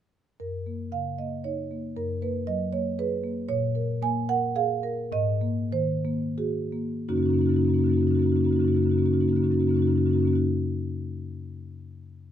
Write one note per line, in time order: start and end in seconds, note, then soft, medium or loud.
0.40 1.92 F#2 soft
0.40 0.90 A#4 medium
0.67 1.08 A#3 soft
0.92 1.34 C#3 soft
0.92 1.18 F5 medium
1.19 1.60 A#3 soft
1.19 1.44 D#5 medium
1.44 1.86 D#4 soft
1.44 1.94 C#5 medium
1.71 1.97 A#3 soft
1.96 3.45 F#2 medium
1.96 2.21 A#4 medium
2.22 2.63 A#3 soft
2.22 2.47 B4 medium
2.47 2.88 F#3 soft
2.47 2.72 D#5 medium
2.73 3.13 A#3 soft
2.73 2.97 C#5 medium
2.99 3.39 G#4 soft
2.99 3.47 B4 medium
3.24 3.49 A#3 soft
3.49 5.08 A#2 medium
3.49 3.99 C#5 medium
3.75 4.18 A#4 medium
4.02 4.45 A#3 medium
4.02 4.28 G#5 loud
4.29 4.72 A#4 medium
4.29 4.55 F#5 loud
4.56 5.00 G#4 medium
4.56 5.10 F5 medium
4.83 5.12 A#4 medium
5.12 7.04 G#2 medium
5.12 5.70 D#5 medium
5.41 5.91 A#3 medium
5.72 6.24 D#3 medium
5.72 6.34 C5 medium
6.05 6.58 A#3 medium
6.38 6.94 F#4 medium
6.38 7.05 G#4 medium
6.72 7.07 A#3 medium
7.09 7.19 F#2 medium
7.09 7.19 C#3 medium
7.09 7.17 A#3 medium
7.09 7.18 C#4 medium
7.09 7.17 D#4 medium
7.09 7.16 F#4 medium
7.16 7.29 F#2 medium
7.16 7.29 C#3 soft
7.16 7.25 A#3 soft
7.16 7.26 C#4 soft
7.16 7.26 D#4 soft
7.16 7.23 F#4 soft
7.23 7.33 A#3 soft
7.23 7.35 C#4 soft
7.23 7.33 D#4 soft
7.23 7.31 F#4 medium
7.29 7.39 F#2 medium
7.29 7.38 C#3 soft
7.29 7.41 A#3 soft
7.29 7.41 D#4 soft
7.29 7.39 F#4 medium
7.35 7.47 C#3 soft
7.35 7.43 C#4 soft
7.39 7.49 F#2 medium
7.39 7.50 A#3 soft
7.39 7.49 D#4 soft
7.39 7.46 F#4 medium
7.43 7.52 C#4 soft
7.43 7.54 F#4 medium
7.47 7.58 F#2 medium
7.47 7.56 C#3 soft
7.47 7.57 A#3 soft
7.47 7.56 D#4 soft
7.52 7.59 C#4 soft
7.52 7.62 F#4 medium
7.56 7.68 F#2 medium
7.56 7.65 C#3 soft
7.56 7.65 A#3 soft
7.56 7.67 C#4 soft
7.56 7.65 D#4 soft
7.62 7.74 C#3 soft
7.62 7.74 A#3 soft
7.62 7.74 D#4 soft
7.62 7.70 F#4 soft
7.67 7.79 F#2 medium
7.67 7.75 C#4 soft
7.67 7.79 F#4 medium
7.74 7.84 C#3 soft
7.74 7.81 A#3 soft
7.74 7.84 C#4 soft
7.74 7.83 D#4 soft
7.79 7.88 F#2 medium
7.79 7.89 A#3 soft
7.79 7.86 F#4 soft
7.83 7.93 C#3 soft
7.83 7.92 C#4 soft
7.83 7.91 D#4 soft
7.83 7.93 F#4 medium
7.88 7.97 F#2 medium
7.88 7.97 A#3 soft
7.88 7.99 D#4 soft
7.92 8.03 C#3 soft
7.92 8.01 C#4 soft
7.92 8.01 F#4 soft
7.97 8.07 F#2 medium
7.97 8.03 A#3 soft
7.97 8.07 D#4 soft
8.01 8.12 C#3 soft
8.01 8.11 A#3 soft
8.01 8.10 C#4 soft
8.01 8.08 F#4 medium
8.07 8.17 F#2 medium
8.07 8.19 C#4 soft
8.07 8.15 D#4 soft
8.07 8.15 F#4 soft
8.11 8.22 C#3 soft
8.11 8.19 A#3 soft
8.11 8.22 F#4 soft
8.15 8.26 F#2 medium
8.15 8.27 A#3 soft
8.15 8.23 D#4 soft
8.19 8.32 C#3 soft
8.19 8.27 C#4 soft
8.19 8.32 D#4 soft
8.19 8.29 F#4 soft
8.26 8.36 F#2 medium
8.26 8.36 A#3 soft
8.26 8.36 C#4 soft
8.26 8.37 F#4 medium
8.32 8.46 F#2 medium
8.32 8.41 C#3 soft
8.32 8.44 A#3 soft
8.32 8.41 D#4 soft
8.36 8.45 C#4 soft
8.36 8.45 F#4 soft
8.41 8.51 C#3 soft
8.41 8.52 A#3 soft
8.41 8.48 D#4 soft
8.45 8.56 F#2 medium
8.45 8.53 C#4 soft
8.45 8.56 D#4 soft
8.45 8.53 F#4 medium
8.51 8.59 C#3 soft
8.51 8.60 A#3 soft
8.51 8.62 C#4 soft
8.51 8.60 F#4 soft
8.56 8.65 F#2 medium
8.56 8.68 C#3 soft
8.56 8.64 D#4 soft
8.60 8.68 A#3 soft
8.60 8.69 C#4 soft
8.60 8.68 F#4 medium
8.64 8.75 F#2 medium
8.64 8.77 C#3 soft
8.64 8.75 A#3 soft
8.64 8.72 D#4 soft
8.64 8.76 F#4 medium
8.69 8.77 C#4 soft
8.69 8.81 D#4 soft
8.75 8.85 F#2 medium
8.75 8.87 C#3 soft
8.75 8.83 A#3 soft
8.75 8.86 C#4 soft
8.75 8.84 F#4 medium
8.81 8.95 F#2 medium
8.81 8.90 A#3 soft
8.81 8.89 D#4 soft
8.81 8.92 F#4 soft
8.86 8.97 C#3 soft
8.86 8.94 C#4 soft
8.86 8.98 D#4 soft
8.90 8.98 A#3 soft
8.90 9.02 C#4 soft
8.90 8.99 F#4 medium
8.95 9.04 F#2 medium
8.95 9.05 C#3 soft
8.95 9.05 A#3 soft
8.95 9.05 D#4 soft
8.95 9.06 F#4 soft
9.02 9.13 F#2 medium
9.02 9.14 C#3 soft
9.02 9.14 A#3 soft
9.02 9.11 C#4 soft
9.02 9.13 D#4 soft
9.02 9.13 F#4 medium
9.11 9.23 F#2 medium
9.11 9.23 C#3 soft
9.11 9.22 A#3 soft
9.11 9.19 C#4 soft
9.11 9.21 D#4 soft
9.11 9.21 F#4 medium
9.19 9.31 F#2 medium
9.19 9.33 C#3 soft
9.19 9.29 A#3 soft
9.19 9.28 C#4 soft
9.19 9.29 D#4 soft
9.19 9.28 F#4 soft
9.28 9.41 F#2 medium
9.28 9.37 A#3 soft
9.28 9.36 C#4 soft
9.28 9.37 D#4 soft
9.28 9.36 F#4 soft
9.33 9.42 C#3 soft
9.33 9.45 A#3 soft
9.33 9.43 C#4 soft
9.33 9.44 F#4 medium
9.37 9.50 F#2 medium
9.37 9.46 D#4 soft
9.42 9.52 C#3 soft
9.42 9.53 A#3 soft
9.42 9.51 C#4 soft
9.42 9.52 F#4 medium
9.46 9.58 F#2 medium
9.46 9.54 D#4 soft
9.51 9.62 C#3 soft
9.51 9.61 A#3 soft
9.51 9.59 C#4 soft
9.51 9.62 D#4 soft
9.51 9.60 F#4 medium
9.58 9.68 F#2 medium
9.58 9.71 C#3 soft
9.58 9.69 A#3 soft
9.58 9.68 C#4 soft
9.58 9.70 D#4 soft
9.58 9.67 F#4 medium
9.67 9.77 F#2 medium
9.67 9.77 A#3 soft
9.67 9.76 C#4 soft
9.67 9.79 D#4 soft
9.67 9.74 F#4 soft
9.71 9.79 C#3 soft
9.71 9.82 F#4 medium
9.76 9.87 F#2 medium
9.76 9.88 C#3 soft
9.76 9.85 A#3 soft
9.76 9.83 C#4 soft
9.76 9.88 D#4 soft
9.82 9.93 A#3 soft
9.82 9.90 C#4 soft
9.82 9.90 F#4 medium
9.87 9.96 F#2 medium
9.87 9.98 C#3 soft
9.87 9.98 C#4 soft
9.87 9.96 D#4 soft
9.87 9.98 F#4 soft
9.93 10.06 F#2 medium
9.93 10.01 A#3 soft
9.93 10.03 D#4 soft
9.98 10.06 C#3 soft
9.98 10.09 A#3 soft
9.98 10.07 C#4 soft
9.98 10.06 F#4 medium
10.03 10.15 F#2 medium
10.03 10.15 C#3 soft
10.03 10.15 C#4 soft
10.03 10.11 D#4 soft
10.03 10.13 F#4 soft
10.09 10.17 A#3 soft
10.09 10.19 D#4 soft
10.09 10.20 F#4 medium
10.15 10.27 F#2 medium
10.15 10.24 C#3 soft
10.15 10.25 A#3 soft
10.15 10.22 C#4 soft
10.19 10.31 C#4 soft
10.19 10.27 D#4 soft
10.19 10.28 F#4 soft
10.24 10.40 F#2 medium
10.24 10.33 C#3 soft
10.24 10.33 A#3 soft
10.24 10.35 D#4 soft
10.24 10.36 F#4 medium
10.31 10.40 C#3 soft
10.31 10.40 A#3 soft
10.31 10.40 C#4 soft
10.35 10.39 D#4 soft
10.35 10.40 F#4 soft